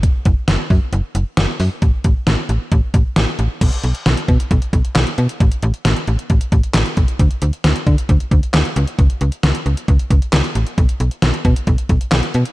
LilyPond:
<<
  \new Staff \with { instrumentName = "FM bass" } { \clef bass \time 4/4 \key b \mixolydian \tempo 4 = 134 r8 fis,,16 r16 fis,,16 r16 fis,16 r16 fis,,16 r16 fis,,16 r16 fis,,16 r16 fis,16 r16 | a,,16 r16 a,,16 r16 a,,16 r16 a,,16 r16 a,,16 r16 a,,16 r16 a,,16 r16 a,,16 r16 | b,,16 r16 b,,16 r16 b,,16 r16 b,16 r16 b,,16 r16 b,,16 r16 b,,16 r16 b,16 r16 | a,,16 r16 a,,16 r16 a,,16 r16 a,,16 r16 a,,16 r16 a,,16 r16 a,,16 r16 b,,16 r16 |
d,16 r16 d,16 r16 d,16 r16 d16 r16 d,16 r16 d,16 r16 d,16 r16 cis,16 r16 | cis,16 r16 cis,16 r16 cis,16 r16 cis,16 r16 cis,16 r16 cis,16 r16 cis,16 r16 a,,16 r16 | b,,16 r16 b,,16 r16 b,,16 r16 b,16 r16 b,,16 r16 b,,16 r16 b,,16 r16 b,16 r16 | }
  \new DrumStaff \with { instrumentName = "Drums" } \drummode { \time 4/4 <hh bd>8 <hh bd>8 <hh sn>8 <hho bd>8 hh8 hh8 <hh sn>8 hho8 | <hh bd>8 <hh bd>8 <hh sn>8 hh8 <hh bd>8 <hh bd>8 <hh sn>8 hh8 | <cymc hh bd>16 hh16 hh16 hh16 <hh sn>16 hh16 <hh bd>16 hh16 <hh bd>16 hh16 <hh bd>16 hh16 <hc hh sn>16 hh16 hh16 hh16 | <hh bd>16 hh16 hh16 hh16 <hh sn>16 hh16 hh16 hh16 <hh bd>16 hh16 <hh bd>16 hh16 <hc hh sn>16 hh16 <hh bd>16 hh16 |
<hh bd>16 hh16 hh16 hh16 <hh sn>16 hh16 <hh bd>16 hh16 <hh bd>16 hh16 <hh bd>16 hh16 <hc hh sn>16 hh16 hh16 hh16 | <hh bd>16 hh16 hh16 hh16 <hh sn>16 hh16 hh16 hh16 <hh bd>16 hh16 <hh bd>16 hh16 <hc hh sn>16 hh16 hh16 hh16 | <hh bd>16 hh16 hh16 hh16 <hh sn>16 hh16 <hh bd>16 hh16 <hh bd>16 hh16 <hh bd>16 hh16 <hc hh sn>16 hh16 hh16 hh16 | }
>>